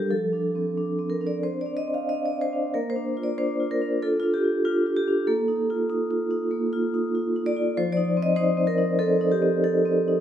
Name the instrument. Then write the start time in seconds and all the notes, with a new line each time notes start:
vibraphone
Already playing: G3 D4 G4 A4 A#4
0.11 F3 A4
0.33 D4
0.55 C4
0.77 D4
0.99 C4
1.10 A#4
1.21 D4
1.27 D5
1.43 C4 C5
1.61 D5
1.66 D4
1.77 D#5
1.88 C4
1.94 F5
2.09 D4 D#5
2.26 D5
2.30 C4
2.41 C5
2.53 D4
2.74 A#3 A#4
2.90 C5
2.96 D4
3.17 F4
3.23 D5
3.38 D4 C5
3.60 F4
3.71 A#4
4.02 F4 A4
4.20 D4 F4
4.34 G4
4.44 F4
4.65 D4 F4
4.87 F4
4.97 G4
5.08 D4
5.27 A#3 A4
5.48 D#4
5.70 F4
5.90 D#4
6.11 F4
6.31 D#4
6.51 A#3
6.73 F4
6.94 D#4
7.15 F4
7.36 D#4
7.46 D5
7.57 F4
7.77 F3 C5
7.92 D5
7.97 D#4
8.17 C4
8.22 D#5
8.36 D#4 C5
8.57 C4
8.67 A#4
8.78 D#4
8.99 C4 A4
9.21 D#4
9.32 G4
9.42 C4
9.64 D#4 A4
9.85 C4
10.08 D#4